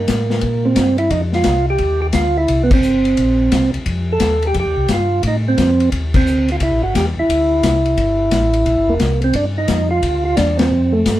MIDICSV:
0, 0, Header, 1, 4, 480
1, 0, Start_track
1, 0, Tempo, 342857
1, 1555, Time_signature, 4, 2, 24, 8
1, 15677, End_track
2, 0, Start_track
2, 0, Title_t, "Tonewheel organ"
2, 0, Program_c, 0, 16
2, 0, Note_on_c, 0, 58, 88
2, 915, Note_on_c, 0, 60, 111
2, 938, Note_off_c, 0, 58, 0
2, 1358, Note_off_c, 0, 60, 0
2, 1377, Note_on_c, 0, 64, 84
2, 1555, Note_off_c, 0, 64, 0
2, 1559, Note_on_c, 0, 63, 102
2, 1698, Note_off_c, 0, 63, 0
2, 1884, Note_on_c, 0, 65, 110
2, 2323, Note_off_c, 0, 65, 0
2, 2381, Note_on_c, 0, 67, 110
2, 2808, Note_off_c, 0, 67, 0
2, 2825, Note_on_c, 0, 67, 94
2, 2901, Note_off_c, 0, 67, 0
2, 3004, Note_on_c, 0, 65, 92
2, 3321, Note_off_c, 0, 65, 0
2, 3326, Note_on_c, 0, 64, 100
2, 3679, Note_off_c, 0, 64, 0
2, 3688, Note_on_c, 0, 59, 54
2, 3801, Note_off_c, 0, 59, 0
2, 3829, Note_on_c, 0, 60, 100
2, 5192, Note_off_c, 0, 60, 0
2, 5775, Note_on_c, 0, 69, 117
2, 6234, Note_off_c, 0, 69, 0
2, 6260, Note_on_c, 0, 67, 85
2, 6395, Note_off_c, 0, 67, 0
2, 6434, Note_on_c, 0, 67, 97
2, 6887, Note_off_c, 0, 67, 0
2, 6900, Note_on_c, 0, 65, 98
2, 7316, Note_off_c, 0, 65, 0
2, 7384, Note_on_c, 0, 63, 99
2, 7509, Note_off_c, 0, 63, 0
2, 7676, Note_on_c, 0, 60, 95
2, 8255, Note_off_c, 0, 60, 0
2, 8627, Note_on_c, 0, 60, 95
2, 9101, Note_off_c, 0, 60, 0
2, 9126, Note_on_c, 0, 65, 89
2, 9188, Note_off_c, 0, 65, 0
2, 9276, Note_on_c, 0, 64, 103
2, 9547, Note_off_c, 0, 64, 0
2, 9566, Note_on_c, 0, 66, 102
2, 9729, Note_off_c, 0, 66, 0
2, 9746, Note_on_c, 0, 67, 90
2, 9880, Note_off_c, 0, 67, 0
2, 10071, Note_on_c, 0, 64, 96
2, 12450, Note_on_c, 0, 58, 86
2, 12522, Note_off_c, 0, 64, 0
2, 12887, Note_off_c, 0, 58, 0
2, 12936, Note_on_c, 0, 60, 83
2, 13095, Note_off_c, 0, 60, 0
2, 13096, Note_on_c, 0, 62, 98
2, 13233, Note_off_c, 0, 62, 0
2, 13409, Note_on_c, 0, 63, 97
2, 13847, Note_off_c, 0, 63, 0
2, 13868, Note_on_c, 0, 65, 88
2, 14336, Note_off_c, 0, 65, 0
2, 14352, Note_on_c, 0, 65, 89
2, 14508, Note_off_c, 0, 65, 0
2, 14512, Note_on_c, 0, 62, 82
2, 14804, Note_on_c, 0, 60, 79
2, 14806, Note_off_c, 0, 62, 0
2, 15295, Note_on_c, 0, 57, 94
2, 15313, Note_off_c, 0, 60, 0
2, 15677, Note_off_c, 0, 57, 0
2, 15677, End_track
3, 0, Start_track
3, 0, Title_t, "Tonewheel organ"
3, 0, Program_c, 1, 16
3, 113, Note_on_c, 1, 45, 77
3, 580, Note_off_c, 1, 45, 0
3, 590, Note_on_c, 1, 46, 70
3, 1058, Note_off_c, 1, 46, 0
3, 1064, Note_on_c, 1, 43, 85
3, 1535, Note_off_c, 1, 43, 0
3, 1548, Note_on_c, 1, 41, 83
3, 2017, Note_off_c, 1, 41, 0
3, 2020, Note_on_c, 1, 36, 91
3, 2493, Note_off_c, 1, 36, 0
3, 2509, Note_on_c, 1, 39, 69
3, 2977, Note_off_c, 1, 39, 0
3, 2992, Note_on_c, 1, 38, 87
3, 3459, Note_off_c, 1, 38, 0
3, 3474, Note_on_c, 1, 36, 88
3, 3940, Note_off_c, 1, 36, 0
3, 3948, Note_on_c, 1, 31, 71
3, 4417, Note_off_c, 1, 31, 0
3, 4437, Note_on_c, 1, 34, 72
3, 4901, Note_off_c, 1, 34, 0
3, 4927, Note_on_c, 1, 36, 97
3, 5199, Note_off_c, 1, 36, 0
3, 5215, Note_on_c, 1, 36, 33
3, 5302, Note_off_c, 1, 36, 0
3, 5400, Note_on_c, 1, 41, 80
3, 5863, Note_off_c, 1, 41, 0
3, 5884, Note_on_c, 1, 39, 81
3, 6345, Note_off_c, 1, 39, 0
3, 6361, Note_on_c, 1, 41, 75
3, 6513, Note_off_c, 1, 41, 0
3, 6515, Note_on_c, 1, 39, 54
3, 6667, Note_on_c, 1, 36, 66
3, 6674, Note_off_c, 1, 39, 0
3, 6819, Note_off_c, 1, 36, 0
3, 6839, Note_on_c, 1, 43, 94
3, 7302, Note_off_c, 1, 43, 0
3, 7322, Note_on_c, 1, 45, 89
3, 7783, Note_off_c, 1, 45, 0
3, 7802, Note_on_c, 1, 41, 94
3, 8264, Note_off_c, 1, 41, 0
3, 8289, Note_on_c, 1, 39, 71
3, 8747, Note_off_c, 1, 39, 0
3, 8761, Note_on_c, 1, 38, 92
3, 9223, Note_off_c, 1, 38, 0
3, 9248, Note_on_c, 1, 36, 92
3, 9396, Note_off_c, 1, 36, 0
3, 9401, Note_on_c, 1, 34, 48
3, 9558, Note_off_c, 1, 34, 0
3, 9564, Note_on_c, 1, 31, 71
3, 9708, Note_off_c, 1, 31, 0
3, 9723, Note_on_c, 1, 40, 85
3, 10009, Note_off_c, 1, 40, 0
3, 10038, Note_on_c, 1, 40, 39
3, 10119, Note_off_c, 1, 40, 0
3, 10211, Note_on_c, 1, 38, 68
3, 10669, Note_off_c, 1, 38, 0
3, 10690, Note_on_c, 1, 36, 88
3, 11149, Note_off_c, 1, 36, 0
3, 11167, Note_on_c, 1, 31, 80
3, 11627, Note_off_c, 1, 31, 0
3, 11641, Note_on_c, 1, 33, 78
3, 12104, Note_off_c, 1, 33, 0
3, 12121, Note_on_c, 1, 34, 69
3, 12268, Note_on_c, 1, 31, 55
3, 12274, Note_off_c, 1, 34, 0
3, 12427, Note_on_c, 1, 28, 68
3, 12432, Note_off_c, 1, 31, 0
3, 12580, Note_off_c, 1, 28, 0
3, 12599, Note_on_c, 1, 36, 92
3, 13064, Note_off_c, 1, 36, 0
3, 13072, Note_on_c, 1, 43, 87
3, 13540, Note_off_c, 1, 43, 0
3, 13547, Note_on_c, 1, 41, 82
3, 14018, Note_off_c, 1, 41, 0
3, 14034, Note_on_c, 1, 38, 65
3, 14502, Note_off_c, 1, 38, 0
3, 14517, Note_on_c, 1, 40, 91
3, 14984, Note_off_c, 1, 40, 0
3, 14996, Note_on_c, 1, 41, 85
3, 15463, Note_off_c, 1, 41, 0
3, 15479, Note_on_c, 1, 43, 88
3, 15677, Note_off_c, 1, 43, 0
3, 15677, End_track
4, 0, Start_track
4, 0, Title_t, "Drums"
4, 107, Note_on_c, 9, 44, 59
4, 107, Note_on_c, 9, 51, 67
4, 114, Note_on_c, 9, 38, 64
4, 118, Note_on_c, 9, 36, 19
4, 247, Note_off_c, 9, 44, 0
4, 247, Note_off_c, 9, 51, 0
4, 254, Note_off_c, 9, 38, 0
4, 258, Note_off_c, 9, 36, 0
4, 424, Note_on_c, 9, 38, 54
4, 564, Note_off_c, 9, 38, 0
4, 577, Note_on_c, 9, 51, 58
4, 595, Note_on_c, 9, 36, 22
4, 717, Note_off_c, 9, 51, 0
4, 735, Note_off_c, 9, 36, 0
4, 1060, Note_on_c, 9, 44, 48
4, 1060, Note_on_c, 9, 51, 68
4, 1067, Note_on_c, 9, 38, 67
4, 1071, Note_on_c, 9, 36, 19
4, 1200, Note_off_c, 9, 44, 0
4, 1200, Note_off_c, 9, 51, 0
4, 1207, Note_off_c, 9, 38, 0
4, 1211, Note_off_c, 9, 36, 0
4, 1371, Note_on_c, 9, 51, 46
4, 1511, Note_off_c, 9, 51, 0
4, 1546, Note_on_c, 9, 51, 63
4, 1550, Note_on_c, 9, 36, 21
4, 1686, Note_off_c, 9, 51, 0
4, 1690, Note_off_c, 9, 36, 0
4, 1856, Note_on_c, 9, 38, 39
4, 1996, Note_off_c, 9, 38, 0
4, 2011, Note_on_c, 9, 44, 58
4, 2011, Note_on_c, 9, 51, 69
4, 2018, Note_on_c, 9, 38, 72
4, 2026, Note_on_c, 9, 36, 19
4, 2151, Note_off_c, 9, 44, 0
4, 2151, Note_off_c, 9, 51, 0
4, 2158, Note_off_c, 9, 38, 0
4, 2166, Note_off_c, 9, 36, 0
4, 2497, Note_on_c, 9, 51, 49
4, 2508, Note_on_c, 9, 36, 22
4, 2637, Note_off_c, 9, 51, 0
4, 2648, Note_off_c, 9, 36, 0
4, 2976, Note_on_c, 9, 44, 53
4, 2976, Note_on_c, 9, 51, 68
4, 2983, Note_on_c, 9, 38, 66
4, 2993, Note_on_c, 9, 36, 21
4, 3116, Note_off_c, 9, 44, 0
4, 3116, Note_off_c, 9, 51, 0
4, 3123, Note_off_c, 9, 38, 0
4, 3133, Note_off_c, 9, 36, 0
4, 3475, Note_on_c, 9, 51, 63
4, 3478, Note_on_c, 9, 36, 19
4, 3615, Note_off_c, 9, 51, 0
4, 3618, Note_off_c, 9, 36, 0
4, 3789, Note_on_c, 9, 49, 80
4, 3793, Note_on_c, 9, 36, 87
4, 3929, Note_off_c, 9, 49, 0
4, 3933, Note_off_c, 9, 36, 0
4, 3952, Note_on_c, 9, 44, 59
4, 4092, Note_off_c, 9, 44, 0
4, 4270, Note_on_c, 9, 51, 47
4, 4410, Note_off_c, 9, 51, 0
4, 4439, Note_on_c, 9, 51, 63
4, 4447, Note_on_c, 9, 36, 20
4, 4579, Note_off_c, 9, 51, 0
4, 4587, Note_off_c, 9, 36, 0
4, 4923, Note_on_c, 9, 44, 59
4, 4923, Note_on_c, 9, 51, 77
4, 4928, Note_on_c, 9, 36, 26
4, 4930, Note_on_c, 9, 38, 73
4, 5063, Note_off_c, 9, 44, 0
4, 5063, Note_off_c, 9, 51, 0
4, 5068, Note_off_c, 9, 36, 0
4, 5070, Note_off_c, 9, 38, 0
4, 5234, Note_on_c, 9, 51, 48
4, 5374, Note_off_c, 9, 51, 0
4, 5401, Note_on_c, 9, 51, 63
4, 5408, Note_on_c, 9, 36, 23
4, 5541, Note_off_c, 9, 51, 0
4, 5548, Note_off_c, 9, 36, 0
4, 5877, Note_on_c, 9, 44, 56
4, 5877, Note_on_c, 9, 51, 68
4, 5884, Note_on_c, 9, 36, 24
4, 5884, Note_on_c, 9, 38, 70
4, 6017, Note_off_c, 9, 44, 0
4, 6017, Note_off_c, 9, 51, 0
4, 6024, Note_off_c, 9, 36, 0
4, 6024, Note_off_c, 9, 38, 0
4, 6194, Note_on_c, 9, 51, 46
4, 6334, Note_off_c, 9, 51, 0
4, 6361, Note_on_c, 9, 51, 61
4, 6366, Note_on_c, 9, 36, 26
4, 6501, Note_off_c, 9, 51, 0
4, 6506, Note_off_c, 9, 36, 0
4, 6837, Note_on_c, 9, 44, 54
4, 6837, Note_on_c, 9, 51, 62
4, 6844, Note_on_c, 9, 38, 62
4, 6845, Note_on_c, 9, 36, 20
4, 6977, Note_off_c, 9, 44, 0
4, 6977, Note_off_c, 9, 51, 0
4, 6984, Note_off_c, 9, 38, 0
4, 6985, Note_off_c, 9, 36, 0
4, 7320, Note_on_c, 9, 51, 68
4, 7325, Note_on_c, 9, 36, 23
4, 7460, Note_off_c, 9, 51, 0
4, 7465, Note_off_c, 9, 36, 0
4, 7807, Note_on_c, 9, 44, 48
4, 7807, Note_on_c, 9, 51, 64
4, 7808, Note_on_c, 9, 36, 25
4, 7814, Note_on_c, 9, 38, 67
4, 7947, Note_off_c, 9, 44, 0
4, 7947, Note_off_c, 9, 51, 0
4, 7948, Note_off_c, 9, 36, 0
4, 7954, Note_off_c, 9, 38, 0
4, 8122, Note_on_c, 9, 51, 45
4, 8262, Note_off_c, 9, 51, 0
4, 8288, Note_on_c, 9, 51, 59
4, 8290, Note_on_c, 9, 36, 24
4, 8428, Note_off_c, 9, 51, 0
4, 8430, Note_off_c, 9, 36, 0
4, 8596, Note_on_c, 9, 49, 67
4, 8600, Note_on_c, 9, 36, 78
4, 8736, Note_off_c, 9, 49, 0
4, 8740, Note_off_c, 9, 36, 0
4, 8768, Note_on_c, 9, 44, 59
4, 8908, Note_off_c, 9, 44, 0
4, 9077, Note_on_c, 9, 51, 46
4, 9217, Note_off_c, 9, 51, 0
4, 9242, Note_on_c, 9, 51, 66
4, 9249, Note_on_c, 9, 36, 27
4, 9382, Note_off_c, 9, 51, 0
4, 9389, Note_off_c, 9, 36, 0
4, 9731, Note_on_c, 9, 36, 25
4, 9732, Note_on_c, 9, 44, 62
4, 9732, Note_on_c, 9, 51, 73
4, 9739, Note_on_c, 9, 38, 64
4, 9871, Note_off_c, 9, 36, 0
4, 9872, Note_off_c, 9, 44, 0
4, 9872, Note_off_c, 9, 51, 0
4, 9879, Note_off_c, 9, 38, 0
4, 10213, Note_on_c, 9, 36, 17
4, 10216, Note_on_c, 9, 51, 69
4, 10353, Note_off_c, 9, 36, 0
4, 10356, Note_off_c, 9, 51, 0
4, 10686, Note_on_c, 9, 44, 57
4, 10686, Note_on_c, 9, 51, 73
4, 10690, Note_on_c, 9, 36, 23
4, 10693, Note_on_c, 9, 38, 74
4, 10826, Note_off_c, 9, 44, 0
4, 10826, Note_off_c, 9, 51, 0
4, 10830, Note_off_c, 9, 36, 0
4, 10833, Note_off_c, 9, 38, 0
4, 10996, Note_on_c, 9, 51, 42
4, 11136, Note_off_c, 9, 51, 0
4, 11165, Note_on_c, 9, 51, 57
4, 11168, Note_on_c, 9, 36, 29
4, 11305, Note_off_c, 9, 51, 0
4, 11308, Note_off_c, 9, 36, 0
4, 11637, Note_on_c, 9, 44, 51
4, 11637, Note_on_c, 9, 51, 70
4, 11643, Note_on_c, 9, 36, 18
4, 11644, Note_on_c, 9, 38, 64
4, 11777, Note_off_c, 9, 44, 0
4, 11777, Note_off_c, 9, 51, 0
4, 11783, Note_off_c, 9, 36, 0
4, 11784, Note_off_c, 9, 38, 0
4, 11948, Note_on_c, 9, 51, 50
4, 12088, Note_off_c, 9, 51, 0
4, 12121, Note_on_c, 9, 51, 51
4, 12123, Note_on_c, 9, 36, 22
4, 12261, Note_off_c, 9, 51, 0
4, 12263, Note_off_c, 9, 36, 0
4, 12594, Note_on_c, 9, 44, 50
4, 12594, Note_on_c, 9, 51, 65
4, 12598, Note_on_c, 9, 36, 20
4, 12601, Note_on_c, 9, 38, 68
4, 12734, Note_off_c, 9, 44, 0
4, 12734, Note_off_c, 9, 51, 0
4, 12738, Note_off_c, 9, 36, 0
4, 12741, Note_off_c, 9, 38, 0
4, 12902, Note_on_c, 9, 51, 42
4, 13042, Note_off_c, 9, 51, 0
4, 13068, Note_on_c, 9, 51, 68
4, 13075, Note_on_c, 9, 36, 21
4, 13208, Note_off_c, 9, 51, 0
4, 13215, Note_off_c, 9, 36, 0
4, 13549, Note_on_c, 9, 44, 60
4, 13549, Note_on_c, 9, 51, 68
4, 13556, Note_on_c, 9, 38, 65
4, 13557, Note_on_c, 9, 36, 20
4, 13689, Note_off_c, 9, 44, 0
4, 13689, Note_off_c, 9, 51, 0
4, 13696, Note_off_c, 9, 38, 0
4, 13697, Note_off_c, 9, 36, 0
4, 14036, Note_on_c, 9, 51, 66
4, 14039, Note_on_c, 9, 36, 19
4, 14176, Note_off_c, 9, 51, 0
4, 14179, Note_off_c, 9, 36, 0
4, 14516, Note_on_c, 9, 44, 47
4, 14516, Note_on_c, 9, 51, 73
4, 14520, Note_on_c, 9, 36, 21
4, 14523, Note_on_c, 9, 38, 79
4, 14656, Note_off_c, 9, 44, 0
4, 14656, Note_off_c, 9, 51, 0
4, 14660, Note_off_c, 9, 36, 0
4, 14663, Note_off_c, 9, 38, 0
4, 14825, Note_on_c, 9, 51, 66
4, 14832, Note_on_c, 9, 38, 86
4, 14965, Note_off_c, 9, 51, 0
4, 14972, Note_off_c, 9, 38, 0
4, 15479, Note_on_c, 9, 44, 56
4, 15479, Note_on_c, 9, 51, 72
4, 15482, Note_on_c, 9, 36, 23
4, 15486, Note_on_c, 9, 38, 60
4, 15619, Note_off_c, 9, 44, 0
4, 15619, Note_off_c, 9, 51, 0
4, 15622, Note_off_c, 9, 36, 0
4, 15626, Note_off_c, 9, 38, 0
4, 15677, End_track
0, 0, End_of_file